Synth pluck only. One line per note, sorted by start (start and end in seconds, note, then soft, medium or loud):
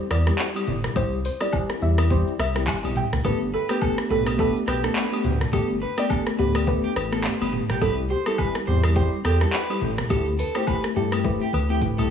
0.11 0.25 D5 medium
0.97 1.10 C5 loud
1.25 1.39 C5 medium
1.42 1.52 D5 medium
1.82 1.96 E5 medium
2.11 2.25 C5 medium
2.40 2.53 E5 medium
2.97 3.10 G5 medium
3.25 3.39 B4 loud
3.54 3.68 A4 medium
3.71 3.80 B4 medium
4.11 4.25 A4 medium
4.40 4.53 A4 medium
4.68 4.82 B4 medium
5.54 5.68 G4 loud
5.83 5.96 B4 medium
5.99 6.09 D5 medium
6.40 6.53 G4 medium
6.68 6.82 B4 medium
6.96 7.10 B4 medium
7.82 7.96 A4 loud
8.11 8.25 G4 medium
8.27 8.37 A4 medium
8.68 8.82 G4 medium
8.96 9.10 G4 medium
9.25 9.39 A4 medium
10.11 10.25 G4 loud
10.40 10.53 B4 medium
10.56 10.66 C5 medium
10.96 11.10 G4 medium
11.25 11.39 B4 medium
11.54 11.67 B4 medium